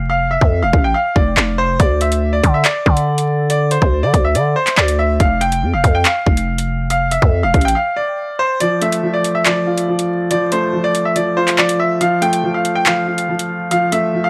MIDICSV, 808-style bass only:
0, 0, Header, 1, 2, 480
1, 0, Start_track
1, 0, Tempo, 425532
1, 107, Time_signature, 4, 2, 24, 8
1, 16128, End_track
2, 0, Start_track
2, 0, Title_t, "808-style bass"
2, 0, Program_c, 0, 38
2, 0, Note_on_c, 0, 29, 101
2, 423, Note_off_c, 0, 29, 0
2, 466, Note_on_c, 0, 41, 103
2, 707, Note_on_c, 0, 28, 98
2, 724, Note_off_c, 0, 41, 0
2, 821, Note_off_c, 0, 28, 0
2, 826, Note_on_c, 0, 33, 99
2, 1057, Note_off_c, 0, 33, 0
2, 1307, Note_on_c, 0, 29, 102
2, 1537, Note_off_c, 0, 29, 0
2, 1547, Note_on_c, 0, 29, 106
2, 2008, Note_off_c, 0, 29, 0
2, 2027, Note_on_c, 0, 38, 110
2, 2718, Note_off_c, 0, 38, 0
2, 2747, Note_on_c, 0, 50, 105
2, 2977, Note_off_c, 0, 50, 0
2, 3226, Note_on_c, 0, 50, 108
2, 4263, Note_off_c, 0, 50, 0
2, 4307, Note_on_c, 0, 38, 106
2, 4547, Note_on_c, 0, 50, 96
2, 4564, Note_off_c, 0, 38, 0
2, 4661, Note_off_c, 0, 50, 0
2, 4666, Note_on_c, 0, 38, 106
2, 4906, Note_on_c, 0, 50, 102
2, 4923, Note_off_c, 0, 38, 0
2, 5135, Note_off_c, 0, 50, 0
2, 5387, Note_on_c, 0, 38, 104
2, 5848, Note_off_c, 0, 38, 0
2, 5867, Note_on_c, 0, 29, 102
2, 6346, Note_on_c, 0, 41, 97
2, 6363, Note_off_c, 0, 29, 0
2, 6466, Note_on_c, 0, 29, 98
2, 6483, Note_off_c, 0, 41, 0
2, 6581, Note_off_c, 0, 29, 0
2, 6586, Note_on_c, 0, 41, 104
2, 6817, Note_off_c, 0, 41, 0
2, 7066, Note_on_c, 0, 29, 100
2, 8103, Note_off_c, 0, 29, 0
2, 8146, Note_on_c, 0, 41, 105
2, 8386, Note_on_c, 0, 28, 97
2, 8403, Note_off_c, 0, 41, 0
2, 8500, Note_off_c, 0, 28, 0
2, 8506, Note_on_c, 0, 33, 101
2, 8737, Note_off_c, 0, 33, 0
2, 16128, End_track
0, 0, End_of_file